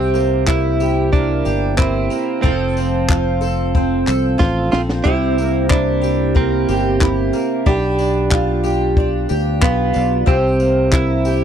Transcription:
0.00 1.42 C2 loud
0.00 2.43 C3 medium
0.00 0.44 C4 medium
0.00 0.79 G4 medium
0.14 1.12 A#3 medium
0.14 tambourine medium
0.47 1.76 E4 medium
0.47 1.09 E4 medium
0.47 kick loud
0.47 clap loud
0.80 1.44 G4 medium
0.80 tambourine medium
1.13 2.09 A#3 medium
1.13 1.74 D4 medium
1.13 kick medium
1.45 2.08 G1 medium
1.45 2.43 G4 medium
1.45 tambourine medium
1.78 2.41 C4 medium
1.78 2.50 E4 medium
1.78 kick loud
1.78 clap loud
2.10 2.50 A#3 medium
2.10 tambourine medium
2.42 4.04 F1 medium
2.42 5.05 F3 medium
2.42 4.35 C4 medium
2.42 3.40 A4 medium
2.42 kick loud
2.77 3.75 C4 medium
2.77 tambourine medium
3.09 4.37 F4 medium
3.09 kick loud
3.09 clap loud
3.41 4.06 A4 medium
3.41 tambourine medium
3.75 4.72 C4 medium
3.75 kick medium
4.07 4.38 C2 medium
4.07 5.04 A4 medium
4.07 clap medium
4.07 tambourine medium
4.38 4.70 A1 medium
4.38 5.11 F4 medium
4.38 4.71 F4 medium
4.38 kick loud
4.38 snare medium
4.72 5.03 A#1 medium
4.72 5.38 C4 medium
4.72 4.81 F4 medium
4.72 snare medium
4.89 snare medium
5.04 6.65 C2 loud
5.04 7.66 C3 medium
5.04 5.66 E4 medium
5.04 6.01 G4 medium
5.04 kick loud
5.38 6.33 A#3 medium
5.38 tambourine medium
5.70 6.36 D4 medium
5.70 7.00 E4 medium
5.70 kick loud
5.70 clap loud
6.02 6.68 G4 medium
6.02 tambourine medium
6.35 7.32 A#3 medium
6.35 7.66 C4 medium
6.35 kick loud
6.69 7.30 G1 medium
6.69 7.66 G4 medium
6.69 tambourine medium
7.01 7.73 E4 medium
7.01 kick loud
7.01 clap loud
7.33 7.73 A#3 medium
7.33 tambourine medium
7.66 9.26 B1 medium
7.66 10.27 B3 medium
7.66 9.68 D4 medium
7.66 8.63 G4 medium
7.66 kick loud
7.99 8.96 D4 medium
7.99 tambourine medium
8.32 9.60 F4 medium
8.32 kick loud
8.32 clap loud
8.64 9.29 G4 medium
8.64 tambourine medium
8.97 9.92 D4 medium
8.97 kick loud
9.29 9.60 D2 medium
9.29 10.27 G4 medium
9.29 tambourine medium
9.62 9.92 B1 medium
9.62 10.24 B3 medium
9.62 10.34 F4 medium
9.62 kick loud
9.62 clap loud
9.93 10.26 B1 loud
9.93 10.33 D4 medium
9.93 tambourine medium
10.26 11.44 C2 medium
10.26 11.44 C3 medium
10.26 10.93 C4 medium
10.26 11.24 G4 medium
10.26 kick loud
10.60 11.44 A#3 medium
10.60 tambourine medium
10.92 11.44 E4 medium
10.92 kick loud
10.92 clap loud
11.25 11.44 G4 medium
11.25 tambourine medium

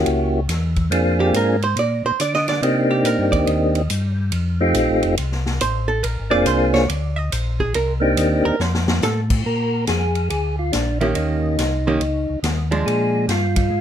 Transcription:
0.00 0.40 A#3 medium
0.00 0.40 C#4 medium
0.00 0.40 E4 medium
0.00 0.40 F#4 medium
0.00 0.41 G4 medium
0.06 0.48 C#2 medium
0.06 ride medium
0.49 0.90 E2 medium
0.49 snare soft
0.49 hi-hat pedal medium
0.49 ride medium
0.76 kick medium
0.76 ride soft
0.90 1.32 F2 medium
0.90 1.56 A#3 medium
0.90 1.56 C4 medium
0.90 1.57 D4 medium
0.90 1.57 F4 medium
0.90 1.57 G#4 medium
0.90 ride medium
1.20 1.34 G4 medium
1.33 1.75 G#2 medium
1.33 1.62 A#4 medium
1.33 hi-hat pedal medium
1.33 ride medium
1.62 1.77 C5 medium
1.62 ride soft
1.76 2.03 A#2 medium
1.76 2.05 D5 medium
1.76 ride medium
2.05 2.12 A#2 soft
2.05 2.20 C5 medium
2.20 2.61 D3 medium
2.20 2.34 D5 medium
2.20 hi-hat pedal medium
2.20 ride medium
2.34 2.48 D#5 loud
2.34 snare soft
2.48 2.63 D5 medium
2.48 snare soft
2.48 ride soft
2.62 3.03 C3 medium
2.62 3.82 A#3 medium
2.62 3.82 C4 medium
2.62 3.81 D4 medium
2.62 3.82 D#4 medium
2.62 3.82 G4 medium
2.62 2.90 D#5 medium
2.62 ride medium
2.91 3.06 G4 medium
3.04 3.18 A#2 medium
3.04 3.32 A#4 medium
3.04 hi-hat pedal medium
3.04 ride medium
3.19 3.33 G2 medium
3.32 3.46 D#2 medium
3.32 3.47 D5 medium
3.32 kick medium
3.32 ride soft
3.47 3.89 D#2 medium
3.47 4.18 D#5 medium
3.47 ride medium
3.75 ride soft
3.90 4.32 G2 medium
3.90 hi-hat pedal medium
3.90 ride medium
4.32 4.74 F2 medium
4.32 ride medium
4.61 5.15 A3 medium
4.61 5.15 C4 medium
4.61 5.15 D#4 medium
4.61 5.15 F4 medium
4.61 5.16 G4 medium
4.75 4.89 A#1 medium
4.75 hi-hat pedal medium
4.75 ride medium
4.90 5.04 A1 medium
5.03 5.17 F1 medium
5.03 ride soft
5.17 5.60 C2 medium
5.17 ride medium
5.32 snare soft
5.46 snare medium
5.61 6.03 A1 medium
5.61 5.88 C5 medium
5.61 hi-hat pedal medium
5.61 ride medium
5.88 6.03 A4 medium
6.03 6.18 A#1 medium
6.03 6.30 A#4 medium
6.03 ride medium
6.19 6.33 G#1 medium
6.30 6.46 F1 medium
6.30 6.85 A#3 medium
6.30 6.85 C4 medium
6.30 6.85 D4 medium
6.30 6.86 F4 medium
6.30 6.85 G#4 medium
6.30 6.45 D5 loud
6.46 6.87 C2 medium
6.46 6.73 C5 medium
6.46 hi-hat pedal medium
6.46 ride medium
6.74 6.89 C#5 loud
6.74 snare soft
6.89 7.30 D2 medium
6.89 7.16 D5 medium
6.89 ride medium
7.16 7.32 D#5 loud
7.32 7.73 A#1 medium
7.32 7.59 C5 medium
7.32 hi-hat pedal medium
7.32 ride medium
7.60 7.74 G#4 medium
7.60 kick soft
7.74 8.16 C2 medium
7.74 7.92 A#4 medium
7.74 ride medium
8.00 8.55 A#3 medium
8.00 8.56 C4 medium
8.00 8.56 D4 medium
8.00 8.56 D#4 medium
8.00 8.56 G4 medium
8.17 8.43 D#2 medium
8.17 hi-hat pedal medium
8.17 ride medium
8.45 8.52 D#2 soft
8.45 8.61 A#4 medium
8.59 9.01 F2 medium
8.59 9.03 C5 loud
8.59 snare soft
8.74 snare medium
8.88 snare medium
9.02 9.44 A2 medium
9.02 9.20 A4 medium
9.02 snare medium
9.02 hi-hat pedal medium
9.30 kick medium
9.30 crash medium
9.46 9.87 A#2 medium
9.46 9.85 A#4 medium
9.87 10.29 F2 medium
9.87 10.29 G#4 loud
9.87 snare medium
9.87 hi-hat pedal soft
9.87 ride medium
10.15 ride soft
10.30 10.72 D2 medium
10.30 10.56 G#4 medium
10.30 ride medium
10.59 10.72 F4 medium
10.72 11.15 A#1 medium
10.72 10.98 D4 medium
10.72 snare medium
10.72 hi-hat pedal medium
10.72 ride medium
11.01 11.55 D#3 medium
11.01 11.56 A#3 medium
11.01 11.56 C#4 medium
11.01 11.07 E4 medium
11.01 11.56 G4 medium
11.01 ride soft
11.15 11.57 D#2 medium
11.15 12.39 D#4 medium
11.15 ride medium
11.58 11.99 C2 medium
11.58 snare medium
11.58 hi-hat pedal soft
11.58 ride medium
11.87 12.00 D#3 medium
11.87 12.00 A#3 medium
11.87 12.00 C#4 medium
11.87 12.00 G4 medium
12.00 12.27 C#2 medium
12.00 ride medium
12.29 12.37 C#2 soft
12.43 12.84 D#2 medium
12.43 snare medium
12.43 hi-hat pedal medium
12.43 ride medium
12.71 13.26 F3 medium
12.71 13.26 G#3 medium
12.71 13.26 D4 medium
12.71 ride soft
12.86 13.28 A#2 medium
12.86 13.26 G#4 medium
12.86 ride medium
13.28 13.70 G2 medium
13.28 13.56 F4 medium
13.28 snare medium
13.28 hi-hat pedal soft
13.28 ride medium
13.56 13.81 F4 loud
13.56 kick medium
13.56 ride medium
13.71 13.81 G#2 medium

